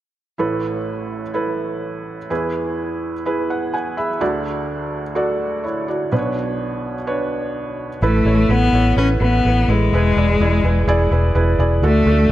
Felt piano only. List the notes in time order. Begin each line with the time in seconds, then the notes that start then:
0.38 A1 A2 E4 A4 B4
1.34 E4 A4 B4
2.30 E2 E3 E4 G#4 B4
3.26 E4 G#4 B4
3.50 F#5
3.74 F#5 G#5
3.97 G#4 E5 B5
4.20 D2 D3 F#4 A4 D5
5.15 F#4 A4 D5
5.64 E4 C#5
5.88 F#4 D5
6.12 B1 B2 D4 B4 C5
6.18 C#5
7.07 D4 B4 C#5
8.02 A2 E4 A4 B4
8.26 E4 A4 C#5
8.50 E4 A4 B4
8.73 E4 A4 C#5
8.97 E4 A4 B4
9.20 E4 A4 B4
9.45 E4 A4 B4
9.70 E4 A4 B4
9.93 E3 E4 G#4 B4
10.17 E4 G#4 D5
10.41 E4 G#4 D5
10.63 E4 G#4 B4
10.88 E4 G#4 D5
11.11 E4 G#4 B4
11.35 E4 G#4 B4
11.59 E4 G#4 D5
11.83 D3 D4 F#4 A4
12.07 D4 F#4 A4